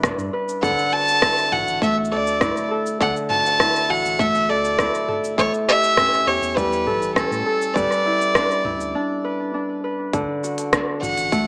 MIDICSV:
0, 0, Header, 1, 5, 480
1, 0, Start_track
1, 0, Key_signature, 2, "major"
1, 0, Tempo, 594059
1, 508, Time_signature, 4, 2, 24, 8
1, 9269, End_track
2, 0, Start_track
2, 0, Title_t, "Violin"
2, 0, Program_c, 0, 40
2, 507, Note_on_c, 0, 78, 96
2, 752, Note_on_c, 0, 81, 116
2, 764, Note_off_c, 0, 78, 0
2, 1230, Note_on_c, 0, 78, 95
2, 1242, Note_off_c, 0, 81, 0
2, 1469, Note_off_c, 0, 78, 0
2, 1477, Note_on_c, 0, 76, 88
2, 1583, Note_off_c, 0, 76, 0
2, 1710, Note_on_c, 0, 74, 79
2, 2157, Note_off_c, 0, 74, 0
2, 2434, Note_on_c, 0, 78, 91
2, 2540, Note_off_c, 0, 78, 0
2, 2667, Note_on_c, 0, 81, 116
2, 3151, Note_on_c, 0, 78, 101
2, 3163, Note_off_c, 0, 81, 0
2, 3393, Note_on_c, 0, 76, 95
2, 3405, Note_off_c, 0, 78, 0
2, 3634, Note_on_c, 0, 74, 82
2, 3646, Note_off_c, 0, 76, 0
2, 4111, Note_off_c, 0, 74, 0
2, 4353, Note_on_c, 0, 73, 99
2, 4460, Note_off_c, 0, 73, 0
2, 4595, Note_on_c, 0, 76, 126
2, 5072, Note_on_c, 0, 73, 104
2, 5084, Note_off_c, 0, 76, 0
2, 5307, Note_on_c, 0, 71, 94
2, 5319, Note_off_c, 0, 73, 0
2, 5782, Note_off_c, 0, 71, 0
2, 5787, Note_on_c, 0, 69, 87
2, 6263, Note_on_c, 0, 74, 85
2, 6275, Note_off_c, 0, 69, 0
2, 7226, Note_off_c, 0, 74, 0
2, 8907, Note_on_c, 0, 78, 92
2, 9269, Note_off_c, 0, 78, 0
2, 9269, End_track
3, 0, Start_track
3, 0, Title_t, "Harp"
3, 0, Program_c, 1, 46
3, 0, Note_on_c, 1, 55, 83
3, 0, Note_on_c, 1, 57, 74
3, 0, Note_on_c, 1, 64, 60
3, 0, Note_on_c, 1, 67, 56
3, 0, Note_on_c, 1, 69, 68
3, 0, Note_on_c, 1, 71, 67
3, 29, Note_on_c, 1, 62, 55
3, 124, Note_off_c, 1, 69, 0
3, 265, Note_off_c, 1, 71, 0
3, 268, Note_on_c, 1, 71, 66
3, 279, Note_off_c, 1, 57, 0
3, 508, Note_on_c, 1, 50, 80
3, 513, Note_on_c, 1, 69, 74
3, 548, Note_off_c, 1, 55, 0
3, 621, Note_off_c, 1, 67, 0
3, 748, Note_on_c, 1, 66, 57
3, 985, Note_off_c, 1, 64, 0
3, 988, Note_on_c, 1, 64, 54
3, 1225, Note_off_c, 1, 66, 0
3, 1228, Note_on_c, 1, 66, 55
3, 1469, Note_on_c, 1, 57, 75
3, 1707, Note_off_c, 1, 69, 0
3, 1710, Note_on_c, 1, 69, 66
3, 1924, Note_off_c, 1, 71, 0
3, 1946, Note_off_c, 1, 64, 0
3, 1949, Note_on_c, 1, 64, 55
3, 2186, Note_off_c, 1, 69, 0
3, 2190, Note_on_c, 1, 69, 67
3, 2419, Note_off_c, 1, 50, 0
3, 2428, Note_on_c, 1, 50, 81
3, 2430, Note_off_c, 1, 69, 0
3, 2433, Note_on_c, 1, 69, 65
3, 2664, Note_off_c, 1, 66, 0
3, 2667, Note_on_c, 1, 66, 58
3, 2904, Note_off_c, 1, 64, 0
3, 2907, Note_on_c, 1, 64, 59
3, 3144, Note_off_c, 1, 66, 0
3, 3147, Note_on_c, 1, 66, 64
3, 3384, Note_off_c, 1, 57, 0
3, 3388, Note_on_c, 1, 57, 75
3, 3626, Note_off_c, 1, 69, 0
3, 3629, Note_on_c, 1, 69, 66
3, 3864, Note_off_c, 1, 64, 0
3, 3867, Note_on_c, 1, 64, 63
3, 3873, Note_off_c, 1, 62, 0
3, 4106, Note_off_c, 1, 69, 0
3, 4109, Note_on_c, 1, 69, 63
3, 4348, Note_on_c, 1, 45, 84
3, 4349, Note_off_c, 1, 69, 0
3, 4352, Note_on_c, 1, 69, 72
3, 4388, Note_off_c, 1, 50, 0
3, 4588, Note_on_c, 1, 67, 62
3, 4637, Note_off_c, 1, 66, 0
3, 4828, Note_on_c, 1, 61, 54
3, 5064, Note_off_c, 1, 67, 0
3, 5067, Note_on_c, 1, 67, 62
3, 5308, Note_on_c, 1, 55, 77
3, 5546, Note_off_c, 1, 69, 0
3, 5549, Note_on_c, 1, 69, 69
3, 5786, Note_off_c, 1, 61, 0
3, 5789, Note_on_c, 1, 61, 58
3, 6026, Note_off_c, 1, 69, 0
3, 6029, Note_on_c, 1, 69, 69
3, 6266, Note_off_c, 1, 55, 0
3, 6269, Note_on_c, 1, 55, 83
3, 6273, Note_on_c, 1, 71, 71
3, 6308, Note_off_c, 1, 45, 0
3, 6505, Note_off_c, 1, 64, 0
3, 6509, Note_on_c, 1, 64, 56
3, 6749, Note_on_c, 1, 62, 59
3, 6798, Note_off_c, 1, 61, 0
3, 6986, Note_off_c, 1, 64, 0
3, 6989, Note_on_c, 1, 64, 59
3, 7227, Note_off_c, 1, 62, 0
3, 7230, Note_on_c, 1, 62, 77
3, 7466, Note_off_c, 1, 71, 0
3, 7469, Note_on_c, 1, 71, 71
3, 7706, Note_off_c, 1, 62, 0
3, 7709, Note_on_c, 1, 62, 58
3, 7804, Note_off_c, 1, 69, 0
3, 7947, Note_off_c, 1, 71, 0
3, 7950, Note_on_c, 1, 71, 63
3, 7960, Note_off_c, 1, 57, 0
3, 8191, Note_on_c, 1, 50, 82
3, 8228, Note_off_c, 1, 55, 0
3, 8300, Note_off_c, 1, 67, 0
3, 8430, Note_on_c, 1, 66, 58
3, 8668, Note_off_c, 1, 62, 0
3, 8671, Note_on_c, 1, 62, 57
3, 8906, Note_off_c, 1, 66, 0
3, 8909, Note_on_c, 1, 66, 58
3, 9100, Note_off_c, 1, 64, 0
3, 9149, Note_on_c, 1, 57, 74
3, 9269, Note_off_c, 1, 50, 0
3, 9269, Note_off_c, 1, 57, 0
3, 9269, Note_off_c, 1, 62, 0
3, 9269, Note_off_c, 1, 66, 0
3, 9269, Note_off_c, 1, 71, 0
3, 9269, End_track
4, 0, Start_track
4, 0, Title_t, "Sub bass"
4, 0, Program_c, 2, 38
4, 0, Note_on_c, 2, 31, 86
4, 109, Note_off_c, 2, 31, 0
4, 145, Note_on_c, 2, 43, 95
4, 243, Note_off_c, 2, 43, 0
4, 508, Note_on_c, 2, 38, 90
4, 604, Note_off_c, 2, 38, 0
4, 1227, Note_on_c, 2, 33, 89
4, 1324, Note_off_c, 2, 33, 0
4, 1348, Note_on_c, 2, 33, 85
4, 1706, Note_on_c, 2, 38, 86
4, 1718, Note_off_c, 2, 33, 0
4, 2029, Note_off_c, 2, 38, 0
4, 2068, Note_on_c, 2, 26, 86
4, 2164, Note_off_c, 2, 26, 0
4, 2428, Note_on_c, 2, 38, 93
4, 2524, Note_off_c, 2, 38, 0
4, 3148, Note_on_c, 2, 33, 89
4, 3244, Note_off_c, 2, 33, 0
4, 3267, Note_on_c, 2, 33, 99
4, 3625, Note_on_c, 2, 38, 86
4, 3637, Note_off_c, 2, 33, 0
4, 3948, Note_off_c, 2, 38, 0
4, 3987, Note_on_c, 2, 26, 89
4, 4084, Note_off_c, 2, 26, 0
4, 4347, Note_on_c, 2, 33, 99
4, 4443, Note_off_c, 2, 33, 0
4, 5065, Note_on_c, 2, 40, 83
4, 5163, Note_off_c, 2, 40, 0
4, 5186, Note_on_c, 2, 40, 98
4, 5548, Note_on_c, 2, 33, 88
4, 5560, Note_off_c, 2, 40, 0
4, 5870, Note_off_c, 2, 33, 0
4, 5908, Note_on_c, 2, 45, 97
4, 6004, Note_off_c, 2, 45, 0
4, 6267, Note_on_c, 2, 31, 98
4, 6363, Note_off_c, 2, 31, 0
4, 6986, Note_on_c, 2, 38, 93
4, 7083, Note_off_c, 2, 38, 0
4, 7105, Note_on_c, 2, 38, 91
4, 7227, Note_off_c, 2, 38, 0
4, 8188, Note_on_c, 2, 38, 99
4, 8284, Note_off_c, 2, 38, 0
4, 8908, Note_on_c, 2, 33, 93
4, 9004, Note_off_c, 2, 33, 0
4, 9027, Note_on_c, 2, 33, 99
4, 9269, Note_off_c, 2, 33, 0
4, 9269, End_track
5, 0, Start_track
5, 0, Title_t, "Drums"
5, 28, Note_on_c, 9, 36, 114
5, 28, Note_on_c, 9, 37, 88
5, 28, Note_on_c, 9, 45, 66
5, 36, Note_on_c, 9, 82, 57
5, 58, Note_off_c, 9, 45, 0
5, 58, Note_on_c, 9, 45, 53
5, 87, Note_off_c, 9, 45, 0
5, 87, Note_on_c, 9, 45, 44
5, 109, Note_off_c, 9, 36, 0
5, 109, Note_off_c, 9, 37, 0
5, 116, Note_off_c, 9, 45, 0
5, 116, Note_on_c, 9, 45, 36
5, 117, Note_off_c, 9, 82, 0
5, 152, Note_on_c, 9, 82, 32
5, 197, Note_off_c, 9, 45, 0
5, 232, Note_off_c, 9, 82, 0
5, 394, Note_on_c, 9, 82, 64
5, 475, Note_off_c, 9, 82, 0
5, 508, Note_on_c, 9, 36, 107
5, 509, Note_on_c, 9, 45, 73
5, 516, Note_on_c, 9, 82, 52
5, 589, Note_off_c, 9, 36, 0
5, 589, Note_off_c, 9, 45, 0
5, 597, Note_off_c, 9, 82, 0
5, 636, Note_on_c, 9, 82, 32
5, 716, Note_off_c, 9, 82, 0
5, 874, Note_on_c, 9, 82, 63
5, 955, Note_off_c, 9, 82, 0
5, 987, Note_on_c, 9, 37, 91
5, 989, Note_on_c, 9, 36, 104
5, 994, Note_on_c, 9, 82, 54
5, 1068, Note_off_c, 9, 37, 0
5, 1069, Note_off_c, 9, 36, 0
5, 1075, Note_off_c, 9, 82, 0
5, 1115, Note_on_c, 9, 82, 32
5, 1196, Note_off_c, 9, 82, 0
5, 1229, Note_on_c, 9, 45, 75
5, 1310, Note_off_c, 9, 45, 0
5, 1356, Note_on_c, 9, 82, 65
5, 1437, Note_off_c, 9, 82, 0
5, 1469, Note_on_c, 9, 36, 100
5, 1477, Note_on_c, 9, 82, 53
5, 1550, Note_off_c, 9, 36, 0
5, 1558, Note_off_c, 9, 82, 0
5, 1656, Note_on_c, 9, 82, 35
5, 1736, Note_off_c, 9, 82, 0
5, 1834, Note_on_c, 9, 82, 65
5, 1914, Note_off_c, 9, 82, 0
5, 1947, Note_on_c, 9, 37, 92
5, 1947, Note_on_c, 9, 45, 75
5, 1949, Note_on_c, 9, 36, 103
5, 1954, Note_on_c, 9, 82, 52
5, 2028, Note_off_c, 9, 37, 0
5, 2028, Note_off_c, 9, 45, 0
5, 2029, Note_off_c, 9, 36, 0
5, 2035, Note_off_c, 9, 82, 0
5, 2074, Note_on_c, 9, 82, 33
5, 2155, Note_off_c, 9, 82, 0
5, 2314, Note_on_c, 9, 82, 57
5, 2395, Note_off_c, 9, 82, 0
5, 2429, Note_on_c, 9, 36, 100
5, 2435, Note_on_c, 9, 82, 50
5, 2510, Note_off_c, 9, 36, 0
5, 2515, Note_off_c, 9, 82, 0
5, 2555, Note_on_c, 9, 82, 33
5, 2636, Note_off_c, 9, 82, 0
5, 2668, Note_on_c, 9, 45, 81
5, 2748, Note_off_c, 9, 45, 0
5, 2796, Note_on_c, 9, 82, 63
5, 2876, Note_off_c, 9, 82, 0
5, 2908, Note_on_c, 9, 37, 89
5, 2909, Note_on_c, 9, 36, 96
5, 2916, Note_on_c, 9, 82, 50
5, 2989, Note_off_c, 9, 36, 0
5, 2989, Note_off_c, 9, 37, 0
5, 2997, Note_off_c, 9, 82, 0
5, 3036, Note_on_c, 9, 82, 30
5, 3117, Note_off_c, 9, 82, 0
5, 3277, Note_on_c, 9, 82, 62
5, 3357, Note_off_c, 9, 82, 0
5, 3388, Note_on_c, 9, 36, 102
5, 3388, Note_on_c, 9, 45, 77
5, 3395, Note_on_c, 9, 82, 49
5, 3468, Note_off_c, 9, 45, 0
5, 3469, Note_off_c, 9, 36, 0
5, 3476, Note_off_c, 9, 82, 0
5, 3514, Note_on_c, 9, 82, 33
5, 3595, Note_off_c, 9, 82, 0
5, 3754, Note_on_c, 9, 82, 67
5, 3835, Note_off_c, 9, 82, 0
5, 3867, Note_on_c, 9, 37, 83
5, 3868, Note_on_c, 9, 36, 103
5, 3875, Note_on_c, 9, 82, 53
5, 3948, Note_off_c, 9, 36, 0
5, 3948, Note_off_c, 9, 37, 0
5, 3956, Note_off_c, 9, 82, 0
5, 3996, Note_on_c, 9, 82, 32
5, 4076, Note_off_c, 9, 82, 0
5, 4108, Note_on_c, 9, 45, 76
5, 4189, Note_off_c, 9, 45, 0
5, 4237, Note_on_c, 9, 82, 60
5, 4317, Note_off_c, 9, 82, 0
5, 4347, Note_on_c, 9, 36, 93
5, 4356, Note_on_c, 9, 82, 46
5, 4428, Note_off_c, 9, 36, 0
5, 4436, Note_off_c, 9, 82, 0
5, 4476, Note_on_c, 9, 82, 33
5, 4556, Note_off_c, 9, 82, 0
5, 4715, Note_on_c, 9, 82, 64
5, 4796, Note_off_c, 9, 82, 0
5, 4827, Note_on_c, 9, 36, 98
5, 4827, Note_on_c, 9, 37, 97
5, 4827, Note_on_c, 9, 45, 83
5, 4835, Note_on_c, 9, 82, 54
5, 4908, Note_off_c, 9, 36, 0
5, 4908, Note_off_c, 9, 37, 0
5, 4908, Note_off_c, 9, 45, 0
5, 4915, Note_off_c, 9, 82, 0
5, 4955, Note_on_c, 9, 82, 28
5, 5036, Note_off_c, 9, 82, 0
5, 5195, Note_on_c, 9, 82, 60
5, 5276, Note_off_c, 9, 82, 0
5, 5307, Note_on_c, 9, 36, 103
5, 5316, Note_on_c, 9, 82, 52
5, 5388, Note_off_c, 9, 36, 0
5, 5396, Note_off_c, 9, 82, 0
5, 5435, Note_on_c, 9, 82, 34
5, 5516, Note_off_c, 9, 82, 0
5, 5547, Note_on_c, 9, 45, 81
5, 5628, Note_off_c, 9, 45, 0
5, 5675, Note_on_c, 9, 82, 59
5, 5756, Note_off_c, 9, 82, 0
5, 5787, Note_on_c, 9, 36, 94
5, 5788, Note_on_c, 9, 37, 88
5, 5796, Note_on_c, 9, 82, 50
5, 5868, Note_off_c, 9, 36, 0
5, 5869, Note_off_c, 9, 37, 0
5, 5877, Note_off_c, 9, 82, 0
5, 5915, Note_on_c, 9, 82, 33
5, 5996, Note_off_c, 9, 82, 0
5, 6156, Note_on_c, 9, 82, 60
5, 6236, Note_off_c, 9, 82, 0
5, 6268, Note_on_c, 9, 36, 99
5, 6269, Note_on_c, 9, 45, 70
5, 6277, Note_on_c, 9, 82, 51
5, 6348, Note_off_c, 9, 36, 0
5, 6350, Note_off_c, 9, 45, 0
5, 6358, Note_off_c, 9, 82, 0
5, 6390, Note_on_c, 9, 37, 30
5, 6398, Note_on_c, 9, 82, 33
5, 6471, Note_off_c, 9, 37, 0
5, 6478, Note_off_c, 9, 82, 0
5, 6637, Note_on_c, 9, 82, 65
5, 6717, Note_off_c, 9, 82, 0
5, 6748, Note_on_c, 9, 36, 103
5, 6748, Note_on_c, 9, 37, 106
5, 6755, Note_on_c, 9, 82, 54
5, 6829, Note_off_c, 9, 36, 0
5, 6829, Note_off_c, 9, 37, 0
5, 6836, Note_off_c, 9, 82, 0
5, 6876, Note_on_c, 9, 82, 31
5, 6957, Note_off_c, 9, 82, 0
5, 6988, Note_on_c, 9, 45, 77
5, 7069, Note_off_c, 9, 45, 0
5, 7116, Note_on_c, 9, 82, 63
5, 7197, Note_off_c, 9, 82, 0
5, 8189, Note_on_c, 9, 36, 96
5, 8189, Note_on_c, 9, 45, 75
5, 8189, Note_on_c, 9, 46, 42
5, 8196, Note_on_c, 9, 82, 29
5, 8269, Note_off_c, 9, 45, 0
5, 8269, Note_off_c, 9, 46, 0
5, 8270, Note_off_c, 9, 36, 0
5, 8277, Note_off_c, 9, 82, 0
5, 8436, Note_on_c, 9, 82, 78
5, 8516, Note_off_c, 9, 82, 0
5, 8549, Note_on_c, 9, 46, 62
5, 8556, Note_on_c, 9, 82, 40
5, 8630, Note_off_c, 9, 46, 0
5, 8637, Note_off_c, 9, 82, 0
5, 8668, Note_on_c, 9, 36, 110
5, 8668, Note_on_c, 9, 37, 105
5, 8668, Note_on_c, 9, 46, 47
5, 8676, Note_on_c, 9, 82, 31
5, 8749, Note_off_c, 9, 36, 0
5, 8749, Note_off_c, 9, 37, 0
5, 8749, Note_off_c, 9, 46, 0
5, 8757, Note_off_c, 9, 82, 0
5, 8908, Note_on_c, 9, 45, 81
5, 8915, Note_on_c, 9, 82, 74
5, 8989, Note_off_c, 9, 45, 0
5, 8996, Note_off_c, 9, 82, 0
5, 9029, Note_on_c, 9, 46, 57
5, 9037, Note_on_c, 9, 82, 43
5, 9110, Note_off_c, 9, 46, 0
5, 9118, Note_off_c, 9, 82, 0
5, 9149, Note_on_c, 9, 36, 101
5, 9150, Note_on_c, 9, 46, 47
5, 9158, Note_on_c, 9, 82, 33
5, 9230, Note_off_c, 9, 36, 0
5, 9231, Note_off_c, 9, 46, 0
5, 9239, Note_off_c, 9, 82, 0
5, 9269, End_track
0, 0, End_of_file